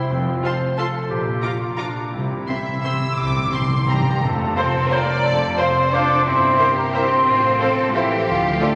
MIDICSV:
0, 0, Header, 1, 11, 480
1, 0, Start_track
1, 0, Key_signature, -1, "major"
1, 0, Tempo, 326797
1, 176, Time_signature, 3, 2, 24, 8
1, 2104, Tempo, 349040
1, 6904, Tempo, 335196
1, 12384, End_track
2, 0, Start_track
2, 0, Title_t, "Flute"
2, 0, Program_c, 0, 73
2, 5469, Note_on_c, 0, 79, 56
2, 5943, Note_on_c, 0, 81, 68
2, 5964, Note_off_c, 0, 79, 0
2, 6424, Note_on_c, 0, 84, 72
2, 6445, Note_off_c, 0, 81, 0
2, 6889, Note_off_c, 0, 84, 0
2, 6897, Note_on_c, 0, 82, 68
2, 7365, Note_on_c, 0, 81, 65
2, 7386, Note_off_c, 0, 82, 0
2, 7854, Note_on_c, 0, 84, 71
2, 7875, Note_off_c, 0, 81, 0
2, 8354, Note_on_c, 0, 86, 75
2, 8376, Note_off_c, 0, 84, 0
2, 8812, Note_off_c, 0, 86, 0
2, 8821, Note_on_c, 0, 84, 75
2, 9531, Note_off_c, 0, 84, 0
2, 9555, Note_on_c, 0, 82, 62
2, 9812, Note_on_c, 0, 84, 78
2, 9833, Note_off_c, 0, 82, 0
2, 10908, Note_off_c, 0, 84, 0
2, 11231, Note_on_c, 0, 76, 67
2, 11693, Note_off_c, 0, 76, 0
2, 11710, Note_on_c, 0, 77, 60
2, 12186, Note_on_c, 0, 81, 73
2, 12208, Note_off_c, 0, 77, 0
2, 12384, Note_off_c, 0, 81, 0
2, 12384, End_track
3, 0, Start_track
3, 0, Title_t, "Violin section"
3, 0, Program_c, 1, 48
3, 657, Note_on_c, 1, 81, 44
3, 774, Note_off_c, 1, 81, 0
3, 1151, Note_on_c, 1, 81, 44
3, 1269, Note_off_c, 1, 81, 0
3, 2092, Note_on_c, 1, 82, 36
3, 2203, Note_off_c, 1, 82, 0
3, 2577, Note_on_c, 1, 82, 42
3, 2687, Note_off_c, 1, 82, 0
3, 3534, Note_on_c, 1, 76, 47
3, 4004, Note_off_c, 1, 76, 0
3, 4036, Note_on_c, 1, 88, 52
3, 4504, Note_off_c, 1, 88, 0
3, 4510, Note_on_c, 1, 86, 55
3, 4985, Note_on_c, 1, 84, 49
3, 4987, Note_off_c, 1, 86, 0
3, 5475, Note_on_c, 1, 82, 48
3, 5482, Note_off_c, 1, 84, 0
3, 5952, Note_off_c, 1, 82, 0
3, 6417, Note_on_c, 1, 72, 47
3, 6418, Note_on_c, 1, 77, 46
3, 6527, Note_off_c, 1, 72, 0
3, 6528, Note_off_c, 1, 77, 0
3, 6893, Note_on_c, 1, 72, 49
3, 6895, Note_on_c, 1, 77, 48
3, 7007, Note_off_c, 1, 72, 0
3, 7009, Note_off_c, 1, 77, 0
3, 7856, Note_on_c, 1, 72, 43
3, 7857, Note_on_c, 1, 77, 44
3, 7971, Note_off_c, 1, 72, 0
3, 7972, Note_off_c, 1, 77, 0
3, 8350, Note_on_c, 1, 72, 52
3, 8350, Note_on_c, 1, 77, 51
3, 8465, Note_off_c, 1, 72, 0
3, 8465, Note_off_c, 1, 77, 0
3, 9294, Note_on_c, 1, 72, 48
3, 9296, Note_on_c, 1, 76, 42
3, 9409, Note_off_c, 1, 72, 0
3, 9411, Note_off_c, 1, 76, 0
3, 9797, Note_on_c, 1, 72, 47
3, 9801, Note_on_c, 1, 76, 49
3, 9911, Note_off_c, 1, 72, 0
3, 9915, Note_off_c, 1, 76, 0
3, 10750, Note_on_c, 1, 72, 43
3, 10751, Note_on_c, 1, 77, 47
3, 10865, Note_off_c, 1, 72, 0
3, 10866, Note_off_c, 1, 77, 0
3, 11237, Note_on_c, 1, 72, 52
3, 11240, Note_on_c, 1, 77, 50
3, 11352, Note_off_c, 1, 72, 0
3, 11355, Note_off_c, 1, 77, 0
3, 12178, Note_on_c, 1, 74, 47
3, 12180, Note_on_c, 1, 77, 48
3, 12293, Note_off_c, 1, 74, 0
3, 12294, Note_off_c, 1, 77, 0
3, 12384, End_track
4, 0, Start_track
4, 0, Title_t, "Violin section"
4, 0, Program_c, 2, 48
4, 662, Note_on_c, 2, 84, 44
4, 779, Note_off_c, 2, 84, 0
4, 1161, Note_on_c, 2, 84, 47
4, 1278, Note_off_c, 2, 84, 0
4, 2105, Note_on_c, 2, 86, 41
4, 2215, Note_off_c, 2, 86, 0
4, 2595, Note_on_c, 2, 86, 45
4, 2705, Note_off_c, 2, 86, 0
4, 3537, Note_on_c, 2, 84, 36
4, 3647, Note_off_c, 2, 84, 0
4, 4039, Note_on_c, 2, 84, 42
4, 4149, Note_off_c, 2, 84, 0
4, 4989, Note_on_c, 2, 84, 34
4, 5099, Note_off_c, 2, 84, 0
4, 5480, Note_on_c, 2, 84, 41
4, 5590, Note_off_c, 2, 84, 0
4, 6421, Note_on_c, 2, 69, 63
4, 6868, Note_off_c, 2, 69, 0
4, 6904, Note_on_c, 2, 74, 77
4, 7853, Note_off_c, 2, 74, 0
4, 7858, Note_on_c, 2, 72, 59
4, 8348, Note_on_c, 2, 69, 65
4, 8360, Note_off_c, 2, 72, 0
4, 8820, Note_off_c, 2, 69, 0
4, 8821, Note_on_c, 2, 64, 58
4, 9285, Note_off_c, 2, 64, 0
4, 9297, Note_on_c, 2, 67, 61
4, 10267, Note_off_c, 2, 67, 0
4, 10281, Note_on_c, 2, 65, 58
4, 10744, Note_on_c, 2, 69, 61
4, 10750, Note_off_c, 2, 65, 0
4, 11228, Note_off_c, 2, 69, 0
4, 11241, Note_on_c, 2, 67, 72
4, 12384, Note_off_c, 2, 67, 0
4, 12384, End_track
5, 0, Start_track
5, 0, Title_t, "Viola section"
5, 0, Program_c, 3, 48
5, 654, Note_on_c, 3, 65, 50
5, 771, Note_off_c, 3, 65, 0
5, 1159, Note_on_c, 3, 65, 44
5, 1277, Note_off_c, 3, 65, 0
5, 2104, Note_on_c, 3, 65, 47
5, 2214, Note_off_c, 3, 65, 0
5, 2585, Note_on_c, 3, 65, 42
5, 2695, Note_off_c, 3, 65, 0
5, 3546, Note_on_c, 3, 60, 43
5, 3656, Note_off_c, 3, 60, 0
5, 4045, Note_on_c, 3, 60, 41
5, 4155, Note_off_c, 3, 60, 0
5, 4989, Note_on_c, 3, 60, 44
5, 5099, Note_off_c, 3, 60, 0
5, 5477, Note_on_c, 3, 60, 40
5, 5587, Note_off_c, 3, 60, 0
5, 6423, Note_on_c, 3, 72, 54
5, 6533, Note_off_c, 3, 72, 0
5, 6899, Note_on_c, 3, 72, 52
5, 6904, Note_off_c, 3, 72, 0
5, 6904, Note_on_c, 3, 72, 54
5, 7019, Note_off_c, 3, 72, 0
5, 7854, Note_on_c, 3, 72, 55
5, 7857, Note_off_c, 3, 72, 0
5, 7857, Note_on_c, 3, 72, 57
5, 7972, Note_off_c, 3, 72, 0
5, 8355, Note_on_c, 3, 72, 53
5, 8470, Note_off_c, 3, 72, 0
5, 9292, Note_on_c, 3, 70, 53
5, 9294, Note_on_c, 3, 72, 55
5, 9406, Note_off_c, 3, 70, 0
5, 9408, Note_off_c, 3, 72, 0
5, 9798, Note_on_c, 3, 72, 49
5, 9800, Note_on_c, 3, 70, 52
5, 9913, Note_off_c, 3, 72, 0
5, 9915, Note_off_c, 3, 70, 0
5, 10746, Note_on_c, 3, 69, 55
5, 10746, Note_on_c, 3, 72, 52
5, 10861, Note_off_c, 3, 69, 0
5, 10861, Note_off_c, 3, 72, 0
5, 11232, Note_on_c, 3, 69, 51
5, 11235, Note_on_c, 3, 72, 56
5, 11347, Note_off_c, 3, 69, 0
5, 11350, Note_off_c, 3, 72, 0
5, 12179, Note_on_c, 3, 65, 56
5, 12180, Note_on_c, 3, 69, 54
5, 12294, Note_off_c, 3, 65, 0
5, 12294, Note_off_c, 3, 69, 0
5, 12384, End_track
6, 0, Start_track
6, 0, Title_t, "Clarinet"
6, 0, Program_c, 4, 71
6, 0, Note_on_c, 4, 64, 73
6, 176, Note_on_c, 4, 60, 76
6, 198, Note_off_c, 4, 64, 0
6, 656, Note_on_c, 4, 72, 78
6, 678, Note_off_c, 4, 60, 0
6, 1153, Note_on_c, 4, 69, 71
6, 1175, Note_off_c, 4, 72, 0
6, 1610, Note_off_c, 4, 69, 0
6, 1619, Note_on_c, 4, 67, 80
6, 2336, Note_on_c, 4, 65, 65
6, 2357, Note_off_c, 4, 67, 0
6, 2591, Note_on_c, 4, 62, 65
6, 2612, Note_off_c, 4, 65, 0
6, 3042, Note_off_c, 4, 62, 0
6, 3050, Note_on_c, 4, 64, 71
6, 5431, Note_off_c, 4, 64, 0
6, 5472, Note_on_c, 4, 67, 60
6, 5945, Note_on_c, 4, 69, 75
6, 5965, Note_off_c, 4, 67, 0
6, 6414, Note_off_c, 4, 69, 0
6, 6422, Note_on_c, 4, 72, 68
6, 6913, Note_on_c, 4, 70, 64
6, 6934, Note_off_c, 4, 72, 0
6, 7365, Note_on_c, 4, 69, 67
6, 7387, Note_off_c, 4, 70, 0
6, 7859, Note_on_c, 4, 72, 66
6, 7881, Note_off_c, 4, 69, 0
6, 8364, Note_on_c, 4, 74, 75
6, 8386, Note_off_c, 4, 72, 0
6, 8824, Note_off_c, 4, 74, 0
6, 8832, Note_on_c, 4, 72, 70
6, 9347, Note_off_c, 4, 72, 0
6, 9559, Note_on_c, 4, 70, 66
6, 9797, Note_off_c, 4, 70, 0
6, 9804, Note_on_c, 4, 72, 78
6, 11212, Note_off_c, 4, 72, 0
6, 11244, Note_on_c, 4, 64, 70
6, 11695, Note_off_c, 4, 64, 0
6, 11703, Note_on_c, 4, 65, 58
6, 12172, Note_on_c, 4, 69, 68
6, 12193, Note_off_c, 4, 65, 0
6, 12384, Note_off_c, 4, 69, 0
6, 12384, End_track
7, 0, Start_track
7, 0, Title_t, "French horn section"
7, 0, Program_c, 5, 60
7, 6422, Note_on_c, 5, 65, 47
7, 6427, Note_on_c, 5, 72, 50
7, 6596, Note_off_c, 5, 65, 0
7, 6600, Note_off_c, 5, 72, 0
7, 6895, Note_on_c, 5, 65, 54
7, 6897, Note_on_c, 5, 72, 56
7, 7065, Note_off_c, 5, 65, 0
7, 7067, Note_off_c, 5, 72, 0
7, 7850, Note_on_c, 5, 72, 48
7, 7851, Note_on_c, 5, 65, 47
7, 8033, Note_off_c, 5, 72, 0
7, 8034, Note_off_c, 5, 65, 0
7, 8355, Note_on_c, 5, 65, 59
7, 8362, Note_on_c, 5, 72, 51
7, 8526, Note_off_c, 5, 65, 0
7, 8531, Note_off_c, 5, 72, 0
7, 9292, Note_on_c, 5, 70, 47
7, 9296, Note_on_c, 5, 64, 45
7, 9474, Note_off_c, 5, 70, 0
7, 9476, Note_off_c, 5, 64, 0
7, 9789, Note_on_c, 5, 70, 54
7, 9793, Note_on_c, 5, 64, 54
7, 9962, Note_off_c, 5, 70, 0
7, 9965, Note_off_c, 5, 64, 0
7, 10739, Note_on_c, 5, 65, 49
7, 10745, Note_on_c, 5, 69, 48
7, 10918, Note_off_c, 5, 65, 0
7, 10923, Note_off_c, 5, 69, 0
7, 11237, Note_on_c, 5, 69, 55
7, 11238, Note_on_c, 5, 65, 55
7, 11407, Note_off_c, 5, 69, 0
7, 11408, Note_off_c, 5, 65, 0
7, 12182, Note_on_c, 5, 65, 50
7, 12190, Note_on_c, 5, 74, 48
7, 12359, Note_off_c, 5, 65, 0
7, 12364, Note_off_c, 5, 74, 0
7, 12384, End_track
8, 0, Start_track
8, 0, Title_t, "Harp"
8, 0, Program_c, 6, 46
8, 0, Note_on_c, 6, 48, 62
8, 0, Note_on_c, 6, 55, 46
8, 0, Note_on_c, 6, 64, 50
8, 0, Note_on_c, 6, 72, 51
8, 175, Note_on_c, 6, 53, 57
8, 193, Note_off_c, 6, 48, 0
8, 195, Note_off_c, 6, 64, 0
8, 196, Note_off_c, 6, 55, 0
8, 415, Note_on_c, 6, 65, 48
8, 644, Note_off_c, 6, 72, 0
8, 662, Note_on_c, 6, 72, 48
8, 898, Note_off_c, 6, 65, 0
8, 916, Note_on_c, 6, 65, 42
8, 1159, Note_on_c, 6, 69, 47
8, 1382, Note_off_c, 6, 72, 0
8, 1399, Note_on_c, 6, 72, 45
8, 1630, Note_on_c, 6, 46, 53
8, 1643, Note_off_c, 6, 69, 0
8, 1644, Note_off_c, 6, 72, 0
8, 1859, Note_on_c, 6, 58, 42
8, 2091, Note_off_c, 6, 65, 0
8, 2108, Note_on_c, 6, 65, 39
8, 2333, Note_off_c, 6, 58, 0
8, 2349, Note_on_c, 6, 58, 37
8, 2592, Note_on_c, 6, 74, 45
8, 2813, Note_off_c, 6, 65, 0
8, 2830, Note_on_c, 6, 65, 41
8, 3059, Note_on_c, 6, 48, 46
8, 3078, Note_off_c, 6, 53, 0
8, 3079, Note_off_c, 6, 58, 0
8, 3080, Note_off_c, 6, 65, 0
8, 3080, Note_off_c, 6, 74, 0
8, 3081, Note_off_c, 6, 46, 0
8, 3295, Note_on_c, 6, 60, 37
8, 3539, Note_on_c, 6, 72, 37
8, 3774, Note_off_c, 6, 60, 0
8, 3791, Note_on_c, 6, 60, 38
8, 4039, Note_on_c, 6, 67, 42
8, 4267, Note_off_c, 6, 72, 0
8, 4283, Note_on_c, 6, 72, 37
8, 4489, Note_off_c, 6, 48, 0
8, 4505, Note_on_c, 6, 48, 48
8, 4727, Note_off_c, 6, 60, 0
8, 4744, Note_on_c, 6, 60, 37
8, 4970, Note_off_c, 6, 72, 0
8, 4987, Note_on_c, 6, 72, 37
8, 5224, Note_off_c, 6, 60, 0
8, 5240, Note_on_c, 6, 60, 38
8, 5467, Note_off_c, 6, 67, 0
8, 5484, Note_on_c, 6, 67, 38
8, 5708, Note_off_c, 6, 72, 0
8, 5724, Note_on_c, 6, 72, 34
8, 5956, Note_on_c, 6, 41, 61
8, 5969, Note_off_c, 6, 48, 0
8, 5974, Note_off_c, 6, 67, 0
8, 6188, Note_on_c, 6, 48, 49
8, 6411, Note_off_c, 6, 60, 0
8, 6428, Note_on_c, 6, 60, 47
8, 6656, Note_off_c, 6, 72, 0
8, 6672, Note_on_c, 6, 72, 48
8, 6905, Note_on_c, 6, 65, 54
8, 7124, Note_off_c, 6, 72, 0
8, 7141, Note_on_c, 6, 72, 48
8, 7355, Note_off_c, 6, 41, 0
8, 7373, Note_on_c, 6, 41, 58
8, 7589, Note_off_c, 6, 48, 0
8, 7606, Note_on_c, 6, 48, 45
8, 7837, Note_off_c, 6, 60, 0
8, 7854, Note_on_c, 6, 60, 47
8, 8098, Note_off_c, 6, 72, 0
8, 8115, Note_on_c, 6, 72, 49
8, 8337, Note_off_c, 6, 65, 0
8, 8354, Note_on_c, 6, 65, 51
8, 8578, Note_off_c, 6, 72, 0
8, 8595, Note_on_c, 6, 72, 47
8, 8828, Note_on_c, 6, 43, 56
8, 8841, Note_off_c, 6, 65, 0
8, 8844, Note_off_c, 6, 41, 0
8, 8844, Note_off_c, 6, 48, 0
8, 9057, Note_on_c, 6, 55, 46
8, 9301, Note_on_c, 6, 64, 49
8, 9534, Note_off_c, 6, 72, 0
8, 9551, Note_on_c, 6, 72, 47
8, 9801, Note_on_c, 6, 70, 53
8, 10028, Note_off_c, 6, 72, 0
8, 10273, Note_on_c, 6, 45, 60
8, 10286, Note_off_c, 6, 43, 0
8, 10286, Note_off_c, 6, 55, 0
8, 10287, Note_off_c, 6, 64, 0
8, 10287, Note_off_c, 6, 70, 0
8, 10500, Note_on_c, 6, 53, 46
8, 10751, Note_on_c, 6, 65, 51
8, 11000, Note_on_c, 6, 72, 47
8, 11245, Note_on_c, 6, 69, 50
8, 11466, Note_off_c, 6, 72, 0
8, 11483, Note_on_c, 6, 72, 50
8, 11711, Note_on_c, 6, 50, 61
8, 11723, Note_off_c, 6, 60, 0
8, 11726, Note_off_c, 6, 45, 0
8, 11727, Note_off_c, 6, 72, 0
8, 11935, Note_on_c, 6, 62, 48
8, 12165, Note_off_c, 6, 65, 0
8, 12182, Note_on_c, 6, 65, 50
8, 12384, Note_off_c, 6, 50, 0
8, 12384, Note_off_c, 6, 53, 0
8, 12384, Note_off_c, 6, 62, 0
8, 12384, Note_off_c, 6, 65, 0
8, 12384, Note_off_c, 6, 69, 0
8, 12384, End_track
9, 0, Start_track
9, 0, Title_t, "Cello section"
9, 0, Program_c, 7, 48
9, 181, Note_on_c, 7, 41, 64
9, 575, Note_off_c, 7, 41, 0
9, 1627, Note_on_c, 7, 46, 55
9, 2021, Note_off_c, 7, 46, 0
9, 3061, Note_on_c, 7, 48, 52
9, 3461, Note_off_c, 7, 48, 0
9, 4513, Note_on_c, 7, 48, 53
9, 4906, Note_off_c, 7, 48, 0
9, 5478, Note_on_c, 7, 55, 69
9, 5920, Note_off_c, 7, 55, 0
9, 5948, Note_on_c, 7, 57, 78
9, 6424, Note_on_c, 7, 60, 78
9, 6425, Note_off_c, 7, 57, 0
9, 6903, Note_off_c, 7, 60, 0
9, 6906, Note_on_c, 7, 58, 81
9, 7371, Note_off_c, 7, 58, 0
9, 7371, Note_on_c, 7, 57, 72
9, 7844, Note_off_c, 7, 57, 0
9, 7853, Note_on_c, 7, 60, 74
9, 8357, Note_off_c, 7, 60, 0
9, 8361, Note_on_c, 7, 62, 85
9, 8827, Note_off_c, 7, 62, 0
9, 8829, Note_on_c, 7, 60, 76
9, 9549, Note_off_c, 7, 60, 0
9, 9552, Note_on_c, 7, 58, 76
9, 9798, Note_off_c, 7, 58, 0
9, 9800, Note_on_c, 7, 60, 87
9, 11237, Note_on_c, 7, 52, 82
9, 11239, Note_off_c, 7, 60, 0
9, 11697, Note_on_c, 7, 53, 71
9, 11705, Note_off_c, 7, 52, 0
9, 12176, Note_off_c, 7, 53, 0
9, 12180, Note_on_c, 7, 57, 73
9, 12384, Note_off_c, 7, 57, 0
9, 12384, End_track
10, 0, Start_track
10, 0, Title_t, "Timpani"
10, 0, Program_c, 8, 47
10, 3064, Note_on_c, 8, 48, 24
10, 3151, Note_off_c, 8, 48, 0
10, 3272, Note_on_c, 8, 48, 29
10, 3362, Note_off_c, 8, 48, 0
10, 3379, Note_on_c, 8, 48, 31
10, 3475, Note_off_c, 8, 48, 0
10, 3492, Note_on_c, 8, 48, 29
10, 3583, Note_off_c, 8, 48, 0
10, 3599, Note_on_c, 8, 48, 29
10, 3696, Note_off_c, 8, 48, 0
10, 3713, Note_on_c, 8, 48, 30
10, 3805, Note_off_c, 8, 48, 0
10, 3822, Note_on_c, 8, 48, 34
10, 3919, Note_off_c, 8, 48, 0
10, 3936, Note_on_c, 8, 48, 35
10, 4027, Note_off_c, 8, 48, 0
10, 4043, Note_on_c, 8, 48, 36
10, 4141, Note_off_c, 8, 48, 0
10, 4157, Note_on_c, 8, 48, 40
10, 4241, Note_off_c, 8, 48, 0
10, 4257, Note_on_c, 8, 48, 41
10, 4350, Note_off_c, 8, 48, 0
10, 4367, Note_on_c, 8, 48, 40
10, 4448, Note_off_c, 8, 48, 0
10, 4464, Note_on_c, 8, 48, 42
10, 4550, Note_off_c, 8, 48, 0
10, 4566, Note_on_c, 8, 48, 45
10, 4650, Note_off_c, 8, 48, 0
10, 4666, Note_on_c, 8, 48, 45
10, 4755, Note_off_c, 8, 48, 0
10, 4771, Note_on_c, 8, 48, 54
10, 4859, Note_off_c, 8, 48, 0
10, 4875, Note_on_c, 8, 48, 54
10, 4969, Note_off_c, 8, 48, 0
10, 4986, Note_on_c, 8, 48, 54
10, 5086, Note_off_c, 8, 48, 0
10, 5103, Note_on_c, 8, 48, 58
10, 5188, Note_off_c, 8, 48, 0
10, 5204, Note_on_c, 8, 48, 63
10, 5304, Note_off_c, 8, 48, 0
10, 5320, Note_on_c, 8, 48, 57
10, 5411, Note_off_c, 8, 48, 0
10, 5428, Note_on_c, 8, 48, 65
10, 5524, Note_off_c, 8, 48, 0
10, 5540, Note_on_c, 8, 48, 72
10, 5632, Note_off_c, 8, 48, 0
10, 5649, Note_on_c, 8, 48, 70
10, 5738, Note_off_c, 8, 48, 0
10, 5754, Note_on_c, 8, 48, 69
10, 5851, Note_off_c, 8, 48, 0
10, 5959, Note_on_c, 8, 41, 67
10, 6623, Note_off_c, 8, 41, 0
10, 12384, End_track
11, 0, Start_track
11, 0, Title_t, "Double bass section"
11, 0, Program_c, 10, 48
11, 178, Note_on_c, 10, 29, 65
11, 574, Note_off_c, 10, 29, 0
11, 1627, Note_on_c, 10, 34, 58
11, 2021, Note_off_c, 10, 34, 0
11, 3061, Note_on_c, 10, 36, 49
11, 3460, Note_off_c, 10, 36, 0
11, 4520, Note_on_c, 10, 36, 49
11, 4910, Note_off_c, 10, 36, 0
11, 5956, Note_on_c, 10, 29, 66
11, 6347, Note_off_c, 10, 29, 0
11, 7369, Note_on_c, 10, 29, 61
11, 7769, Note_off_c, 10, 29, 0
11, 8822, Note_on_c, 10, 31, 65
11, 9213, Note_off_c, 10, 31, 0
11, 10274, Note_on_c, 10, 33, 63
11, 10663, Note_off_c, 10, 33, 0
11, 11711, Note_on_c, 10, 38, 62
11, 12100, Note_off_c, 10, 38, 0
11, 12384, End_track
0, 0, End_of_file